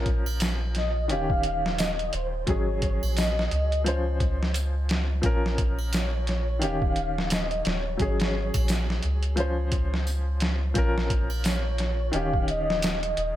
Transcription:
Already playing: sub bass A#1, upright piano F3 C#4 A#4
0.06 kick, closed hi-hat
0.26 triangle
0.40 snare, closed hi-hat, tambourine
0.75 soft synth lead D#5, snare, closed hi-hat
1.08 sub bass D#1, upright piano D#3 C#4 G4, soft synth lead F5, closed hi-hat
1.30 kick
1.43 closed hi-hat
1.66 snare
1.78 soft synth lead D#5, snare, closed hi-hat, tambourine
1.99 closed hi-hat
2.13 sub bass D#1, soft synth lead C5, closed hi-hat
2.47 sub bass G#1, upright piano F#3 C#4 G#4, soft synth lead C#5, kick, closed hi-hat
2.82 kick, closed hi-hat
3.03 sub bass A#1, triangle
3.17 soft synth lead D#5, snare, closed hi-hat, tambourine
3.39 snare
3.51 sub bass C#2, closed hi-hat
3.72 closed hi-hat
3.84 upright piano F3 C#4, closed hi-hat
3.88 upright piano C5
4.20 kick, closed hi-hat
4.43 snare
4.54 closed hi-hat, tambourine
4.89 snare, closed hi-hat
5.22 sub bass A#1, upright piano F3 C#4, kick, closed hi-hat
5.26 upright piano A#4
5.46 snare
5.58 kick, closed hi-hat
5.79 triangle
5.93 soft synth lead C#5, snare, closed hi-hat, tambourine
6.27 snare, closed hi-hat
6.59 sub bass D#1, upright piano D#3 C#4 G4, soft synth lead F5, closed hi-hat
6.82 kick
6.96 closed hi-hat
7.18 snare
7.30 soft synth lead D#5, snare, closed hi-hat, tambourine
7.51 closed hi-hat
7.65 sub bass D#1, soft synth lead C#5, snare, closed hi-hat
7.97 sub bass G#1, upright piano F#3 C#4, kick, closed hi-hat
8.02 upright piano G#4
8.20 snare, closed hi-hat
8.54 sub bass A#1, kick, closed hi-hat, triangle
8.68 snare, closed hi-hat, tambourine
8.90 snare
9.03 sub bass C#2, closed hi-hat
9.23 closed hi-hat
9.36 upright piano F3 C#4, closed hi-hat
9.40 upright piano C5
9.72 kick, closed hi-hat
9.94 snare
10.07 tambourine
10.40 snare, closed hi-hat
10.74 sub bass A#1, upright piano F3 C#4, kick, closed hi-hat
10.78 upright piano A#4
10.98 snare
11.10 kick, closed hi-hat
11.30 triangle
11.44 soft synth lead C#5, snare, closed hi-hat, tambourine
11.78 snare, closed hi-hat
12.12 sub bass D#1, upright piano D#3 C#4, soft synth lead F5, closed hi-hat
12.16 upright piano G4
12.34 kick
12.48 soft synth lead D#5, closed hi-hat
12.70 snare
12.82 snare, closed hi-hat, tambourine
13.03 closed hi-hat
13.17 sub bass D#1, soft synth lead D#5, closed hi-hat

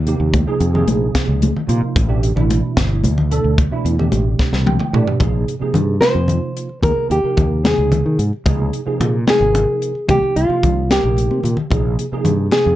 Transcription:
Already playing: fretless electric bass D#2
0.06 tine electric piano C3 F3 A#3 D#4 G4, closed hi-hat
0.20 fretless electric bass D#2
0.34 kick, closed hi-hat, high conga
0.46 tine electric piano C3 F3 A#3 D#4 G#4
0.60 fretless electric bass F2, closed hi-hat
0.73 tine electric piano C3 F3 A#3 D#4 G#4, low conga
0.87 fretless electric bass A#1, closed hi-hat, high conga
1.15 kick, snare, closed hi-hat
1.28 fretless electric bass C#2
1.42 closed hi-hat, high conga
1.57 low conga
1.67 fretless electric bass A#2, tine electric piano C3 F3 A#3 D#4 F4, closed hi-hat
1.82 muted fretless electric bass stroke
1.96 fretless electric bass A1, kick, closed hi-hat, high conga
2.07 tine electric piano B2 E3 A3 D4 G4
2.23 closed hi-hat
2.35 fretless electric bass A1, tine electric piano B2 E3 A3 D4 E4, low conga
2.50 closed hi-hat, high conga
2.77 fretless electric bass G1, kick, snare, closed hi-hat
3.04 fretless electric bass D2, closed hi-hat, high conga
3.18 low conga
3.30 tine electric piano B2 E3 A3 D4 A4, closed hi-hat
3.44 fretless electric bass D2
3.58 kick, closed hi-hat, high conga
3.71 tine electric piano B2 E3 A3 D4 E4
3.85 fretless electric bass E2, closed hi-hat, low conga
3.98 tine electric piano B2 E3 A3 D4 G4, low conga
4.12 fretless electric bass A1, closed hi-hat, high conga
4.39 muted fretless electric bass stroke, kick, snare, low conga
4.53 fretless electric bass C2, snare
4.66 tine electric piano G5, high tom, high conga, low conga
4.79 mid tom, low conga
4.93 fretless electric bass A2, tine electric piano B2 E3 A3 D4 G4 D5, mid tom
5.07 muted fretless electric bass stroke, floor tom
5.20 fretless electric bass A#1, tine electric piano C3 F3 A#3 D#4 G#4, kick, closed hi-hat, high conga, low conga
5.48 closed hi-hat
5.60 tine electric piano C3 F3 A#3 D#4 G#4, muted fretless electric bass stroke
5.74 fretless electric bass G2, closed hi-hat, low conga
6.01 tine electric piano C3 F3 A#3 D#4 F4, nylon-string guitar C5, snare, closed hi-hat, high conga
6.15 fretless electric bass F2
6.28 closed hi-hat, low conga
6.57 closed hi-hat
6.69 low conga
6.83 fretless electric bass D#2, tine electric piano C3 F3 A#3 D#4 G#4, nylon-string guitar A#4, kick, closed hi-hat, high conga, low conga
6.97 muted fretless electric bass stroke
7.10 fretless electric bass D#2, nylon-string guitar G4, closed hi-hat
7.23 tine electric piano C3 F3 A#3 D#4 A#4, muted fretless electric bass stroke
7.37 fretless electric bass D#2, kick, closed hi-hat, low conga
7.63 tine electric piano C3 F3 A#3 D#4 G#4, nylon-string guitar G#4, snare, closed hi-hat, high conga
7.78 fretless electric bass C#2
7.92 closed hi-hat, low conga
8.06 fretless electric bass D#3
8.19 fretless electric bass G#2, closed hi-hat
8.33 low conga
8.45 fretless electric bass C#2, tine electric piano C3 F3 A#3 D#4 G#4, kick, closed hi-hat, high conga, low conga
8.73 closed hi-hat
8.85 tine electric piano C3 F3 A#3 D#4 G#4, muted fretless electric bass stroke
9.00 fretless electric bass A#2, closed hi-hat, low conga
9.26 tine electric piano C3 F3 A#3 D#4 A#4, snare, closed hi-hat, high conga
9.30 nylon-string guitar G#4
9.41 fretless electric bass G#1
9.55 closed hi-hat, low conga
9.82 closed hi-hat
9.95 low conga
10.07 fretless electric bass C2, tine electric piano C3 F3 A#3 D#4 G4, nylon-string guitar G4, kick, closed hi-hat, high conga, low conga
10.23 muted fretless electric bass stroke
10.36 fretless electric bass C2, nylon-string guitar F4, closed hi-hat, low conga
10.48 tine electric piano C3 F3 A#3 D#4 F4, muted fretless electric bass stroke, low conga
10.63 fretless electric bass C2, kick, closed hi-hat, low conga
10.89 tine electric piano C3 F3 A#3 D#4 A#4, nylon-string guitar G4, snare, closed hi-hat, high conga, low conga
11.04 fretless electric bass A#1, high conga
11.17 closed hi-hat, high conga
11.31 fretless electric bass C3, high conga
11.43 fretless electric bass A#2, closed hi-hat, low conga
11.57 low conga
11.71 fretless electric bass A#1, tine electric piano C3 F3 A#3 D#4 G#4, kick, closed hi-hat, high conga, low conga
11.99 closed hi-hat
12.12 tine electric piano C3 F3 A#3 D#4 G#4, muted fretless electric bass stroke
12.25 fretless electric bass G2, closed hi-hat, low conga
12.51 tine electric piano C3 F3 A#3 D#4 G#4, nylon-string guitar G#4, snare, closed hi-hat, high conga
12.66 fretless electric bass F2

